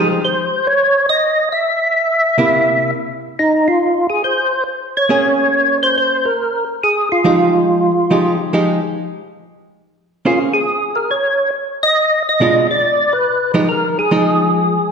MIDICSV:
0, 0, Header, 1, 3, 480
1, 0, Start_track
1, 0, Key_signature, -4, "minor"
1, 0, Tempo, 429185
1, 1852, Time_signature, 4, 2, 24, 8
1, 16682, End_track
2, 0, Start_track
2, 0, Title_t, "Tonewheel organ"
2, 0, Program_c, 0, 16
2, 275, Note_on_c, 0, 72, 82
2, 749, Note_on_c, 0, 73, 100
2, 758, Note_off_c, 0, 72, 0
2, 1188, Note_off_c, 0, 73, 0
2, 1223, Note_on_c, 0, 75, 91
2, 1665, Note_off_c, 0, 75, 0
2, 1703, Note_on_c, 0, 76, 87
2, 3254, Note_off_c, 0, 76, 0
2, 3794, Note_on_c, 0, 63, 76
2, 4113, Note_on_c, 0, 65, 82
2, 4115, Note_off_c, 0, 63, 0
2, 4552, Note_off_c, 0, 65, 0
2, 4581, Note_on_c, 0, 68, 81
2, 4726, Note_off_c, 0, 68, 0
2, 4744, Note_on_c, 0, 72, 85
2, 5187, Note_off_c, 0, 72, 0
2, 5558, Note_on_c, 0, 73, 91
2, 6464, Note_off_c, 0, 73, 0
2, 6519, Note_on_c, 0, 72, 87
2, 6672, Note_off_c, 0, 72, 0
2, 6685, Note_on_c, 0, 72, 88
2, 6994, Note_on_c, 0, 70, 86
2, 7002, Note_off_c, 0, 72, 0
2, 7433, Note_off_c, 0, 70, 0
2, 7645, Note_on_c, 0, 68, 101
2, 7931, Note_off_c, 0, 68, 0
2, 7963, Note_on_c, 0, 65, 82
2, 9347, Note_off_c, 0, 65, 0
2, 11483, Note_on_c, 0, 65, 75
2, 11622, Note_off_c, 0, 65, 0
2, 11784, Note_on_c, 0, 68, 70
2, 12252, Note_on_c, 0, 70, 77
2, 12276, Note_off_c, 0, 68, 0
2, 12419, Note_off_c, 0, 70, 0
2, 12424, Note_on_c, 0, 73, 86
2, 12868, Note_off_c, 0, 73, 0
2, 13232, Note_on_c, 0, 75, 104
2, 13673, Note_off_c, 0, 75, 0
2, 13745, Note_on_c, 0, 75, 89
2, 14170, Note_off_c, 0, 75, 0
2, 14213, Note_on_c, 0, 74, 88
2, 14683, Note_on_c, 0, 71, 75
2, 14690, Note_off_c, 0, 74, 0
2, 15118, Note_off_c, 0, 71, 0
2, 15307, Note_on_c, 0, 70, 90
2, 15633, Note_off_c, 0, 70, 0
2, 15645, Note_on_c, 0, 68, 90
2, 16682, Note_off_c, 0, 68, 0
2, 16682, End_track
3, 0, Start_track
3, 0, Title_t, "Hollow-body jazz guitar"
3, 0, Program_c, 1, 26
3, 0, Note_on_c, 1, 53, 57
3, 0, Note_on_c, 1, 56, 57
3, 0, Note_on_c, 1, 63, 47
3, 0, Note_on_c, 1, 67, 63
3, 216, Note_off_c, 1, 53, 0
3, 217, Note_off_c, 1, 56, 0
3, 223, Note_off_c, 1, 63, 0
3, 225, Note_off_c, 1, 67, 0
3, 2659, Note_on_c, 1, 48, 56
3, 2665, Note_on_c, 1, 58, 58
3, 2673, Note_on_c, 1, 64, 66
3, 3264, Note_off_c, 1, 48, 0
3, 3267, Note_off_c, 1, 58, 0
3, 3271, Note_off_c, 1, 64, 0
3, 5695, Note_on_c, 1, 58, 47
3, 5706, Note_on_c, 1, 61, 56
3, 5706, Note_on_c, 1, 68, 57
3, 7041, Note_off_c, 1, 58, 0
3, 7047, Note_off_c, 1, 61, 0
3, 7047, Note_off_c, 1, 68, 0
3, 8103, Note_on_c, 1, 53, 56
3, 8109, Note_on_c, 1, 56, 52
3, 8114, Note_on_c, 1, 63, 64
3, 8116, Note_on_c, 1, 67, 58
3, 8838, Note_off_c, 1, 53, 0
3, 8841, Note_off_c, 1, 56, 0
3, 8843, Note_off_c, 1, 63, 0
3, 8844, Note_off_c, 1, 67, 0
3, 9066, Note_on_c, 1, 53, 52
3, 9073, Note_on_c, 1, 56, 50
3, 9073, Note_on_c, 1, 63, 54
3, 9078, Note_on_c, 1, 67, 60
3, 9351, Note_off_c, 1, 53, 0
3, 9355, Note_off_c, 1, 56, 0
3, 9355, Note_off_c, 1, 63, 0
3, 9357, Note_off_c, 1, 67, 0
3, 9542, Note_on_c, 1, 53, 57
3, 9547, Note_on_c, 1, 56, 59
3, 9552, Note_on_c, 1, 63, 58
3, 9554, Note_on_c, 1, 67, 58
3, 9829, Note_off_c, 1, 53, 0
3, 9832, Note_off_c, 1, 56, 0
3, 9834, Note_off_c, 1, 63, 0
3, 9835, Note_off_c, 1, 67, 0
3, 11468, Note_on_c, 1, 58, 39
3, 11469, Note_on_c, 1, 61, 45
3, 11476, Note_on_c, 1, 72, 46
3, 11477, Note_on_c, 1, 68, 45
3, 11752, Note_off_c, 1, 58, 0
3, 11753, Note_off_c, 1, 61, 0
3, 11757, Note_off_c, 1, 68, 0
3, 11757, Note_off_c, 1, 72, 0
3, 13870, Note_on_c, 1, 47, 50
3, 13879, Note_on_c, 1, 56, 60
3, 13879, Note_on_c, 1, 62, 57
3, 13889, Note_on_c, 1, 65, 64
3, 14153, Note_off_c, 1, 47, 0
3, 14158, Note_off_c, 1, 56, 0
3, 14158, Note_off_c, 1, 62, 0
3, 14163, Note_off_c, 1, 65, 0
3, 15144, Note_on_c, 1, 53, 59
3, 15146, Note_on_c, 1, 56, 56
3, 15151, Note_on_c, 1, 63, 60
3, 15153, Note_on_c, 1, 67, 57
3, 15284, Note_off_c, 1, 53, 0
3, 15285, Note_off_c, 1, 56, 0
3, 15287, Note_off_c, 1, 63, 0
3, 15289, Note_off_c, 1, 67, 0
3, 15784, Note_on_c, 1, 53, 56
3, 15790, Note_on_c, 1, 56, 53
3, 15792, Note_on_c, 1, 63, 62
3, 16517, Note_off_c, 1, 53, 0
3, 16520, Note_off_c, 1, 56, 0
3, 16521, Note_off_c, 1, 63, 0
3, 16682, End_track
0, 0, End_of_file